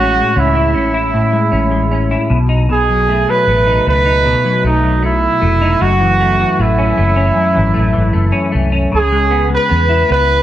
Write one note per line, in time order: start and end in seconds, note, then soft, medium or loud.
0.00 0.20 A1 medium
0.00 1.12 A2 medium
0.00 0.14 G#3 medium
0.00 0.35 C#4 medium
0.00 0.55 E4 medium
0.00 0.40 F#4 loud
0.16 1.32 G#3 medium
0.36 0.75 C#2 medium
0.36 0.73 C#4 medium
0.36 2.32 E4 medium
0.55 0.93 E4 medium
0.75 1.22 A1 medium
0.75 1.51 C#4 medium
0.94 2.10 E4 medium
1.13 2.30 A2 medium
1.33 1.70 G#3 medium
1.52 2.15 A1 medium
1.52 1.90 C#4 medium
1.72 2.38 G#3 medium
1.91 2.38 C#4 medium
2.11 2.38 E4 medium
2.30 3.24 B1 medium
2.30 2.68 B2 medium
2.49 3.65 D#4 medium
2.69 4.24 B2 medium
2.69 3.32 G#4 medium
2.89 3.28 F#3 medium
3.09 3.48 A3 medium
3.28 4.44 F#3 medium
3.28 3.87 B4 loud
3.47 3.78 A1 medium
3.47 3.86 A3 medium
3.67 4.04 D#4 medium
3.86 4.33 C#2 medium
3.86 4.64 A3 soft
3.86 4.62 B4 loud
4.06 5.23 D#4 medium
4.25 5.81 B2 medium
4.44 4.83 F#3 medium
4.64 5.26 B1 medium
4.64 5.02 A3 medium
4.64 5.01 D#4 medium
4.83 6.00 F#3 soft
5.02 5.41 A3 medium
5.02 5.83 E4 medium
5.41 5.73 F1 medium
5.41 6.20 A3 medium
5.61 5.89 D#4 medium
5.81 6.43 F#1 medium
5.81 7.34 F#2 medium
5.81 6.63 F#4 loud
6.00 6.39 E3 medium
6.20 6.58 A3 medium
6.40 7.54 E3 medium
6.59 6.90 A1 medium
6.59 6.96 A3 medium
6.59 8.55 E4 medium
6.78 7.16 C#4 medium
6.97 7.29 F#1 medium
6.97 7.73 A3 soft
7.16 8.32 C#4 medium
7.35 9.00 F#2 medium
7.55 7.72 G#1 medium
7.55 7.93 E3 medium
7.74 7.92 A1 medium
7.74 8.12 A3 medium
7.93 8.11 G#1 medium
7.93 9.11 E3 medium
8.13 8.30 F#1 medium
8.13 8.51 A3 medium
8.32 8.72 C#4 medium
8.52 8.85 C2 medium
8.52 9.00 A3 medium
8.72 9.33 C#4 medium
8.92 9.55 C#2 medium
8.92 10.43 C#3 medium
8.96 9.49 G#4 loud
9.12 9.49 G#3 medium
9.30 9.68 B3 medium
9.49 10.43 G#3 medium
9.54 10.07 B4 medium
9.69 10.02 E2 medium
9.69 10.07 B3 medium
9.89 10.43 E4 medium
10.08 10.43 C#2 medium
10.08 10.43 B3 medium
10.08 10.43 B4 loud